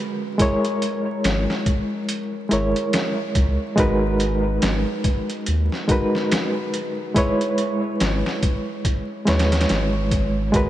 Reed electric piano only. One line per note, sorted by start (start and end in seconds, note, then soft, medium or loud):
0.00 0.35 G#3 medium
0.00 0.35 F#4 medium
0.00 0.36 A#4 medium
0.00 0.37 B4 medium
0.38 2.46 G#3 medium
0.38 2.47 E4 medium
0.38 2.47 A#4 medium
0.38 2.48 C#5 medium
2.49 3.73 G#3 medium
2.49 3.74 E4 medium
2.49 3.74 A#4 medium
2.49 3.75 C#5 medium
3.76 5.84 G#3 medium
3.76 5.85 D#4 medium
3.76 5.85 F#4 medium
3.76 5.86 A#4 medium
3.76 5.86 B4 loud
5.88 7.11 G#3 medium
5.88 7.12 D#4 medium
5.88 7.12 F#4 medium
5.88 7.12 A#4 medium
5.88 7.13 B4 medium
7.14 9.22 G#3 medium
7.14 9.23 E4 medium
7.14 9.24 B4 medium
7.14 9.24 C#5 medium
9.25 10.49 G#3 medium
9.25 10.50 E4 medium
9.25 10.50 B4 medium
9.29 10.51 C#5 medium
10.52 10.69 G#3 medium
10.52 10.69 F#4 medium
10.52 10.69 A#4 medium
10.52 10.69 B4 loud